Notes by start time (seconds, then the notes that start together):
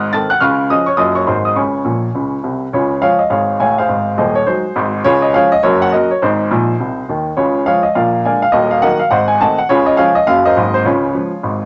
Already playing: G#1 G#2 F#5 D#6 F#6
0.13 D#3 C4 A4 A5 A6
0.30 F#5 F#6
0.40 C#2 C#3 F5 C#6 F6
0.70 F3 C#4 G#4 D#5 D#6
0.86 C#5 C#6
0.97 F#1 F#2 F#3 F4 A#4 D#5 D#6
1.15 C#5 C#6
1.27 G#1 G#2 F#3 D#4 G#4 C5 C6
1.45 D#5 D#6
1.56 C#2 C#3 C#5 G#5 C#6
1.85 A#1 A#2
2.15 C#2 C#3
2.43 C2 C3
2.73 C#2 C#3 F4 G#4 C#5
3.02 F3 G#3 F4 G#4 C#5 F5
3.19 D#5
3.30 G#1 G#2 G#4 C#5 F5
3.60 A1 A2 C#5 F5 G#5
3.78 G#4 C5 F5
3.89 G#1 G#2
4.18 D#1 D#2 G#4 C5 D#5
4.35 C#5
4.46 F#3 G#3 D#4 F#4 G#4 C5
4.76 G#1 G#2
5.04 C#2 C#3 F4 G#4 C#5
5.22 D#5
5.34 F3 G#3 C#4 G#4 C#5 F5
5.52 D#5
5.63 F#1 F#2 F#4 A#4 C#5
5.82 F#5
5.92 F#3 A#3 C#4 F#4 A#4 D#5
6.11 C#5
6.22 G#1 G#2 D#4 G#4 C5
6.51 A#1 A#2
6.80 C2 C3
7.09 D#2 D#3
7.37 C#2 C#3 F4 G#4 C#5
7.66 F3 G#3 G#4 C#5 F5
7.83 D#5
7.95 A#1 A#2 A#4 D5 F5
8.25 D3 G#3 A#3 D5 F5 G#5
8.42 F5
8.52 D#1 D#2 F#4 A#4 D#5
8.71 F5
8.82 D#3 F#3 A#3 A#4 D#5 F#5
9.00 F5
9.11 G#1 G#2 C5 D#5 F#5
9.28 G#5
9.41 D#3 A3 C4 D#5 F#5 A5
9.58 F#5
9.69 C#2 C#3 F4 G#4 C#5
9.86 D#5
9.97 F3 G#3 C#4 G#4 C#5 F5
10.15 D#5
10.27 F#1 F#2 F#3 A#3 C#4 F5
10.45 A#4 C5 D#5
10.57 G#1 G#2 F#3 A#3 C4
10.74 C5
10.85 C#2 C#3 F4 G#4 C#5
11.14 F3 G#3 C#4
11.43 G#1 G#2